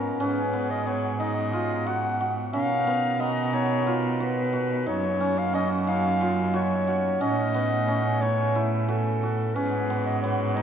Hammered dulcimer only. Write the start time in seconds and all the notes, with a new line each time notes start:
Already playing: B3 C#4 D#4 F4
0.20 C#4
0.53 B3
0.87 B3
1.20 D#4
1.53 F4
1.86 F#4
2.21 F#4
2.53 C#4
2.87 B3
3.20 B3
3.53 D#4
3.87 F4
4.20 F#4
4.53 F#4
4.86 D#4
5.20 C#4
5.53 C#4
5.87 D#4
6.21 F4
6.54 F#4
6.88 F#4
7.21 C#4
7.54 B3
7.88 C#4
8.22 D#4
8.55 E4
8.88 F#4
9.23 F#4
9.56 C#4
9.90 B3
10.24 B3
10.57 D#4